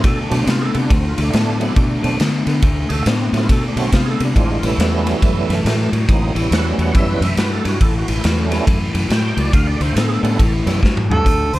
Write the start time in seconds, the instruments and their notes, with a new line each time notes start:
0.04 fingered electric bass B2, clean electric guitar D3 A3, tonewheel organ A4, kick, snare, ride
0.21 tonewheel organ D4
0.30 fingered electric bass B2, clean electric guitar D3 A3, tonewheel organ F#3 A3 C4 D4, snare, ride
0.37 tonewheel organ C4
0.46 fingered electric bass C3, clean electric guitar D3 B3, snare, ride
0.50 tonewheel organ F4
0.61 tonewheel organ G#4 A4
0.74 fingered electric bass C3, clean electric guitar D3 B3, ride
0.79 tonewheel organ D4
0.89 fingered electric bass D2, clean electric guitar D3 A3, tonewheel organ C4, kick, ride
1.07 tonewheel organ F4
1.17 fingered electric bass D2, clean electric guitar D3 A3, ride
1.22 tonewheel organ A3 D4
1.32 fingered electric bass A2, clean electric guitar D3 B3, snare, ride
1.60 clean electric guitar D3 B3, tonewheel organ F#3 A3 C4 E4, ride
1.76 fingered electric bass B2, clean electric guitar D3 A3, kick, ride
2.02 fingered electric bass B2, clean electric guitar D3 A3, tonewheel organ F#3 A3 C4 D4, ride
2.20 clean electric guitar D3 B3, fingered electric bass D3, snare, ride
2.47 fingered electric bass D3, clean electric guitar D3 B3, snare, ride
2.62 fingered electric bass D2, clean electric guitar D3 A3, kick, ride
2.89 fingered electric bass D2, clean electric guitar D3 A3, tonewheel organ G#4, ride
2.93 tonewheel organ A4
3.06 fingered electric bass A2, clean electric guitar D3 B3, tonewheel organ D4, snare, ride
3.21 tonewheel organ C4
3.32 fingered electric bass A2, clean electric guitar D3 B3, tonewheel organ F#3 A3 C4 E4, snare, ride
3.37 tonewheel organ F4
3.49 fingered electric bass B2, clean electric guitar D3 A3, tonewheel organ A4, kick, snare, ride
3.68 tonewheel organ D4
3.76 fingered electric bass B2, clean electric guitar D3 A3, tonewheel organ F#3 A3 C4 F#4, ride
3.80 tonewheel organ C4
3.92 fingered electric bass C3, clean electric guitar D3 B3, tonewheel organ F4, kick, snare, ride
4.06 tonewheel organ G#4
4.10 tonewheel organ A4
4.20 fingered electric bass C3, clean electric guitar D3 B3, ride
4.25 tonewheel organ D4
4.35 fingered electric bass A1, clean electric guitar A2 E3, tonewheel organ G#3 C4 D4 F4, kick, ride
4.39 tonewheel organ C4
4.53 tonewheel organ F4
4.62 fingered electric bass A1, clean electric guitar A2 E3, tonewheel organ G3 B3 C#4 E4, ride
4.66 tonewheel organ E3 A3
4.78 fingered electric bass E2, clean electric guitar A2 F#3, snare, ride
5.06 clean electric guitar A2 F#3, snare, ride
5.22 fingered electric bass F#2, clean electric guitar A2 E3, kick, snare, ride
5.49 fingered electric bass F#2, clean electric guitar A2 E3, snare, ride
5.65 fingered electric bass A2, clean electric guitar A2 F#3, snare, ride
5.92 clean electric guitar A2 F#3, fingered electric bass A2, ride
6.08 fingered electric bass A1, clean electric guitar A2 E3, tonewheel organ F#3 A#3 C4 D#4, kick, ride
6.34 fingered electric bass A1, clean electric guitar A2 E3, tonewheel organ G3 B3 C#4 E4, ride
6.51 fingered electric bass E2, clean electric guitar A2 F#3, tonewheel organ F#5, snare, ride
6.78 fingered electric bass E2, clean electric guitar A2 F#3, tonewheel organ F#5, ride
6.95 fingered electric bass F#2, clean electric guitar A2 E3, tonewheel organ E5, kick, ride
7.10 tonewheel organ B4
7.21 fingered electric bass F#2, clean electric guitar A2 E3, tonewheel organ E5, ride
7.37 fingered electric bass G2, clean electric guitar A2 F#3, tonewheel organ B4, snare, ride
7.53 tonewheel organ A4
7.65 fingered electric bass G2, clean electric guitar A2 F#3, tonewheel organ F#4, snare, ride
7.81 fingered electric bass A1, clean electric guitar A2 E3, tonewheel organ A4, kick, ride
7.98 tonewheel organ F#4
8.08 fingered electric bass A1, clean electric guitar A2 E3, ride
8.13 tonewheel organ E4
8.23 fingered electric bass E2, clean electric guitar A2 F#3, tonewheel organ B3, snare, ride
8.39 tonewheel organ A3 C#4
8.50 clean electric guitar A2 F#3, tonewheel organ G3 B3 C#4 E4, snare, ride
8.66 fingered electric bass F#2, clean electric guitar A2 E3, kick, ride
8.93 fingered electric bass F#2, clean electric guitar A2 E3, ride
9.09 clean electric guitar A2 F#3, fingered electric bass A2, tonewheel organ G5, snare, ride
9.37 fingered electric bass C#2, clean electric guitar A2 F#3, tonewheel organ D5, ride
9.53 fingered electric bass D2, clean electric guitar D3 A3, tonewheel organ F5, kick, ride
9.67 tonewheel organ D5
9.80 fingered electric bass D2, clean electric guitar D3 A3, tonewheel organ C5, ride
9.96 fingered electric bass A2, clean electric guitar D3 B3, tonewheel organ A4, snare, ride
10.08 tonewheel organ G#4
10.12 tonewheel organ A4
10.23 fingered electric bass A2, clean electric guitar D3 B3, tonewheel organ G3 B3 C#4 E4, ride
10.39 fingered electric bass A1, clean electric guitar A2 E3, kick, ride
10.65 fingered electric bass F#2, clean electric guitar A2 E3, tonewheel organ G3 B3 C#4 E4, snare, ride
10.83 fingered electric bass G2, clean electric guitar A2 F#3, kick, snare
10.97 mid tom
11.10 fingered electric bass G2, clean electric guitar A2 F#3, harmonica A4, floor tom
11.26 fingered electric bass D2, clean electric guitar D3 A3, kick, closed hi-hat
11.53 fingered electric bass D2, clean electric guitar D3 A3, harmonica C5, closed hi-hat